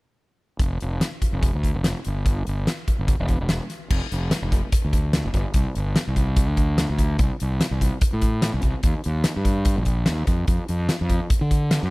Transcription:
0.59 0.78 F1 medium
0.59 kick medium
0.59 closed hi-hat medium
0.80 1.00 F1 medium
0.80 closed hi-hat medium
1.01 snare medium
1.01 closed hi-hat medium
1.22 kick medium
1.22 closed hi-hat medium
1.33 1.51 F1 medium
1.43 kick loud
1.43 closed hi-hat medium
1.54 1.72 D2 medium
1.64 kick medium
1.64 closed hi-hat medium
1.74 1.93 F1 medium
1.84 snare loud
1.84 closed hi-hat medium
2.05 2.42 G1 medium
2.05 closed hi-hat medium
2.26 kick medium
2.26 closed hi-hat medium
2.47 2.65 G1 medium
2.47 closed hi-hat medium
2.67 snare medium
2.67 closed hi-hat medium
2.88 kick medium
2.88 closed hi-hat medium
2.99 3.17 G1 medium
3.08 kick loud
3.08 closed hi-hat medium
3.20 3.38 E1 medium
3.28 kick medium
3.28 closed hi-hat medium
3.41 3.58 E1 medium
3.49 snare medium
3.49 closed hi-hat medium
3.70 snare soft
3.70 closed hi-hat medium
3.90 4.00 F1 medium
3.90 kick medium
3.90 crash medium
4.12 4.30 F1 medium
4.12 closed hi-hat medium
4.31 snare loud
4.31 closed hi-hat medium
4.42 4.61 F1 medium
4.52 kick medium
4.52 closed hi-hat medium
4.72 kick loud
4.72 closed hi-hat medium
4.85 5.21 D2 medium
4.93 kick medium
4.93 closed hi-hat medium
5.13 snare loud
5.13 closed hi-hat medium
5.25 5.33 F#1 medium
5.34 5.44 G1 medium
5.34 kick medium
5.34 closed hi-hat medium
5.54 5.64 C2 medium
5.54 kick loud
5.54 closed hi-hat medium
5.75 5.95 G1 medium
5.75 closed hi-hat medium
5.96 snare loud
5.96 closed hi-hat medium
6.07 6.48 C2 medium
6.16 kick medium
6.16 closed hi-hat medium
6.36 kick loud
6.36 closed hi-hat medium
6.48 6.85 D2 medium
6.57 kick medium
6.57 closed hi-hat medium
6.78 snare loud
6.78 closed hi-hat medium
6.90 7.17 D2 medium
6.99 kick medium
6.99 closed hi-hat medium
7.19 7.29 C2 medium
7.19 kick loud
7.19 closed hi-hat medium
7.40 7.59 C2 medium
7.40 closed hi-hat medium
7.61 snare loud
7.61 closed hi-hat medium
7.71 7.90 C2 medium
7.81 kick medium
7.81 closed hi-hat medium
8.01 kick loud
8.01 closed hi-hat medium
8.13 8.49 A2 medium
8.22 kick medium
8.22 closed hi-hat medium
8.42 snare loud
8.42 closed hi-hat medium
8.54 8.63 C2 medium
8.62 8.73 C2 medium
8.62 kick medium
8.62 closed hi-hat medium
8.83 8.93 D#2 medium
8.83 kick medium
8.83 closed hi-hat medium
9.04 9.24 D#2 medium
9.04 closed hi-hat medium
9.24 snare loud
9.24 closed hi-hat medium
9.36 9.80 G2 medium
9.45 kick medium
9.45 closed hi-hat medium
9.65 kick loud
9.65 closed hi-hat medium
9.78 10.05 A#1 loud
9.85 kick medium
9.85 closed hi-hat medium
10.06 10.26 D#2 medium
10.06 snare loud
10.06 closed hi-hat medium
10.27 10.46 F2 medium
10.27 kick medium
10.27 closed hi-hat medium
10.47 10.58 F2 medium
10.47 kick medium
10.47 closed hi-hat medium
10.68 10.87 F2 medium
10.68 closed hi-hat medium
10.89 snare loud
10.89 closed hi-hat medium
11.01 11.19 F2 medium
11.09 kick medium
11.09 closed hi-hat medium
11.30 kick loud
11.30 closed hi-hat medium
11.41 11.78 D3 medium
11.51 kick medium
11.51 closed hi-hat medium
11.71 snare loud
11.71 closed hi-hat medium
11.82 11.90 F#2 medium
11.82 snare soft

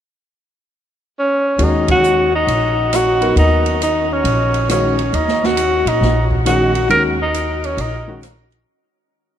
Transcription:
1.19 1.65 C#4 medium
1.59 2.43 D#2 medium
1.59 2.26 D#3 medium
1.59 2.27 G#3 medium
1.59 2.27 C#4 soft
1.59 2.27 F#4 medium
1.59 ride soft
1.63 1.90 D#4 medium
1.88 2.31 F#4 medium
1.88 kick medium
1.88 ride medium
2.04 hi-hat pedal soft
2.35 2.97 D#4 medium
2.47 3.32 A#1 medium
2.47 ride medium
2.93 3.38 F#4 medium
2.93 cross-stick medium
2.93 hi-hat pedal medium
2.93 ride medium
3.21 3.77 F#3 medium
3.21 3.77 B3 medium
3.21 3.77 D#4 medium
3.21 3.78 A#4 medium
3.21 ride soft
3.36 4.20 D#2 medium
3.36 3.78 D#4 medium
3.36 ride soft
3.66 ride soft
3.82 4.14 D#4 medium
3.82 hi-hat pedal medium
3.82 ride medium
4.13 4.70 C#4 medium
4.24 5.09 A#1 medium
4.24 ride medium
4.54 ride soft
4.69 4.95 D#3 soft
4.69 4.95 G#3 soft
4.69 4.95 C#4 soft
4.69 5.16 C#4 medium
4.69 4.95 F#4 medium
4.69 cross-stick medium
4.69 hi-hat pedal soft
4.69 ride medium
4.99 ride soft
5.13 5.82 D#2 medium
5.13 5.47 D#4 medium
5.13 ride soft
5.28 snare soft
5.43 5.89 F#4 medium
5.43 snare soft
5.57 hi-hat pedal soft
5.57 ride medium
5.85 6.00 A#2 medium
5.85 6.25 D#4 medium
5.85 ride medium
6.01 6.85 A#1 medium
6.01 snare soft
6.31 kick soft
6.45 6.72 D#3 medium
6.45 6.72 G#3 medium
6.45 6.72 C#4 medium
6.45 6.87 F#4 medium
6.45 6.72 F#4 medium
6.45 cross-stick medium
6.45 hi-hat pedal soft
6.45 ride medium
6.75 ride soft
6.89 7.74 D#2 medium
6.89 7.16 D#3 medium
6.89 7.16 G#3 soft
6.89 7.16 C#4 medium
6.89 7.16 F#4 medium
6.89 7.03 A#4 medium
6.89 ride soft
7.22 7.67 D#4 medium
7.34 hi-hat pedal soft
7.34 ride medium
7.64 7.82 C#4 medium
7.64 ride soft
7.77 8.63 A#1 medium
7.77 8.24 D#4 medium
7.77 ride medium
8.08 8.21 D#3 medium
8.08 8.21 G#3 medium
8.08 8.21 C#4 medium
8.08 8.22 F#4 medium
8.23 cross-stick medium
8.23 hi-hat pedal soft
8.23 ride medium
8.52 ride soft

